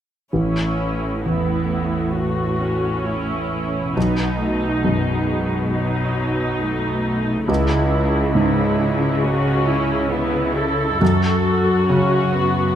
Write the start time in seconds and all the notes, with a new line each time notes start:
0.33 A1 A2 C#4 E4
1.25 E2 B3 E4
2.15 A3 F#4
2.59 C#4
3.06 E4
3.96 B1 B2 B3 D#4
4.40 A3
4.85 F#2 G#3
5.74 F#3 D#4
6.62 A3
7.47 C#2 C#3 G#3 E4
7.92 G#3
8.35 G#2 E4
9.24 C#4 F#4
9.68 E4
10.11 B3 E4
10.56 A4
11.01 F#2 F#4
11.88 C#3 C#4
12.34 B3